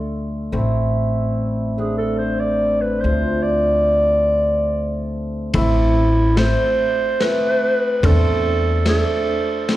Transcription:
0.00 0.49 D2 medium
0.00 0.52 A3 medium
0.00 1.75 D4 soft
0.00 0.59 F4 medium
0.00 0.11 A4 medium
0.52 3.00 A1 medium
0.52 1.77 A3 medium
0.52 1.78 C4 medium
0.52 3.11 E4 medium
1.78 3.04 A3 soft
1.78 5.54 C4 soft
1.78 3.04 D4 soft
1.78 1.97 G#4 medium
1.98 2.17 A4 medium
2.18 2.41 C5 medium
2.39 2.83 D5 medium
2.81 3.02 B4 medium
3.00 5.50 D2 medium
3.00 5.53 A3 medium
3.00 3.44 C5 medium
3.04 6.78 D4 soft
3.04 5.60 F4 medium
3.42 5.11 D5 medium
5.54 6.54 A1 medium
5.54 5.95 A3 medium
5.54 5.96 C4 medium
5.54 5.96 E4 medium
5.54 6.39 E4 medium
5.54 kick medium
5.54 ride medium
6.37 6.78 A3 medium
6.37 6.79 C4 medium
6.37 6.79 E4 medium
6.37 7.22 C5 loud
6.37 snare medium
6.37 ride soft
7.20 7.62 A3 medium
7.20 7.62 C4 medium
7.20 7.62 E4 medium
7.20 8.07 B4 loud
7.20 snare medium
7.20 ride soft
8.03 9.02 E2 loud
8.03 8.44 A3 medium
8.03 8.44 C4 medium
8.03 8.44 D4 medium
8.03 8.87 A4 loud
8.03 kick medium
8.03 ride medium
8.86 9.28 A3 medium
8.86 9.28 C4 medium
8.86 9.27 D4 medium
8.86 9.77 A4 loud
8.86 snare medium
8.86 ride medium
9.69 9.77 A3 medium
9.69 9.77 C4 medium
9.69 9.77 E4 medium
9.69 snare medium
9.69 ride soft

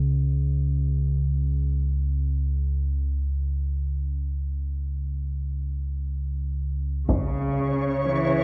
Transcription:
0.00 7.07 C#2 medium
0.00 7.07 C#3 medium
7.08 8.44 C#2 medium
7.08 8.44 C#3 medium
7.08 8.44 C#5 medium
7.08 taiko medium
8.04 8.44 E3 medium

